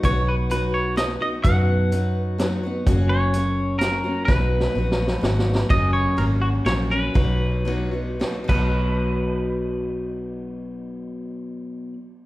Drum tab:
CC |------------------|------------------|------------------|------------------|
RD |------------------|------------------|------------------|------------------|
HH |x-----x-----x-----|x-----x-----x-----|x-----x-----x-----|------------------|
SD |------------o-----|------------o-----|------------o-----|o---o---o-o-o-o-o-|
BD |o-----------------|o-----------------|o-----------------|o-----------------|

CC |------------------|---------------x--|------------------|------------------|
RD |x-----x-----x-----|x-----x-----x-----|------------------|------------------|
HH |------------------|------------------|------------------|------------------|
SD |------------o-----|------------o-----|------------------|------------------|
BD |o-----------------|o--------------o--|------------------|------------------|